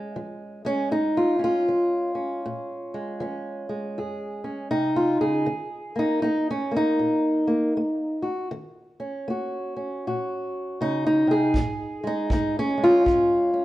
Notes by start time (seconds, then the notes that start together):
Already playing: G#3 C#4
0.16 F3
0.65 G#3 C#4
0.91 F2 D#4
1.17 F4
1.39 C#4
1.44 F4
1.68 F3
2.15 C#4
2.46 A#2
2.94 G#3
3.20 F3 C#4
3.69 G#3
3.98 F2 G#4
4.44 C#4
4.71 C3 D#4
4.96 F4
5.21 C#3 G#4
5.46 D#3
5.96 A#3 D#4
6.22 A#3 D#4
6.50 C#4
6.71 A#3
6.76 D#4
6.99 A#2
7.47 A#3
7.77 A#3
8.22 F#4
8.51 D#3
9.00 C#4
9.28 A#3 F#4
9.77 C#4
10.07 A#2 F#4
10.81 C#3 D#4
11.07 D#4
11.27 C3 G#4
11.54 A#2, kick
12.04 G#3 D#4
12.30 F3 D#4, kick
12.59 C#4
12.78 G#3
12.84 F4
13.05 F2 C#4, kick
13.53 C#4